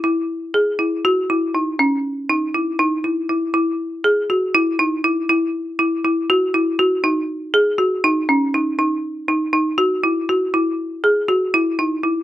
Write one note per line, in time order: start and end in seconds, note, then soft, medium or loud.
0.04 0.32 E4 medium
0.54 0.68 G#4 medium
0.79 0.93 E4 medium
1.05 1.19 F#4 medium
1.30 1.44 E4 medium
1.55 1.69 D#4 medium
1.79 2.07 C#4 medium
2.29 2.44 D#4 medium
2.54 2.69 E4 medium
2.79 2.93 D#4 medium
3.04 3.19 E4 medium
3.29 3.44 E4 medium
3.54 3.82 E4 medium
4.04 4.19 G#4 medium
4.30 4.44 F#4 medium
4.55 4.69 E4 medium
4.79 4.93 D#4 medium
5.04 5.19 E4 medium
5.29 5.58 E4 medium
5.79 5.93 E4 medium
6.05 6.19 E4 medium
6.30 6.44 F#4 medium
6.54 6.68 E4 medium
6.79 6.93 F#4 medium
7.04 7.32 D#4 medium
7.54 7.68 G#4 medium
7.78 7.93 F#4 medium
8.04 8.18 D#4 medium
8.29 8.43 C#4 medium
8.54 8.68 D#4 medium
8.79 9.07 D#4 medium
9.28 9.43 D#4 medium
9.53 9.67 D#4 medium
9.78 9.92 F#4 medium
10.04 10.18 E4 medium
10.29 10.43 F#4 medium
10.54 10.82 E4 medium
11.04 11.18 G#4 medium
11.28 11.43 F#4 medium
11.54 11.68 E4 medium
11.79 11.93 D#4 medium
12.04 12.18 E4 medium